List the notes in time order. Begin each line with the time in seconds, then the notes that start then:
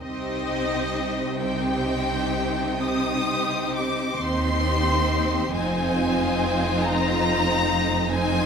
0.01 C2 C3 C4 D#4 G4 C5 D#5
1.39 C4 D#4 G4 C5 G5
2.82 C4 D#4 G4 C5 D#6
3.75 D6
4.20 D#2 C4 D#4 G4 C5 C6
5.53 F1 F2 C4 D#4 F4 C5 G#5
6.82 A#5
8.10 C4 D#4 F4 C5 G#5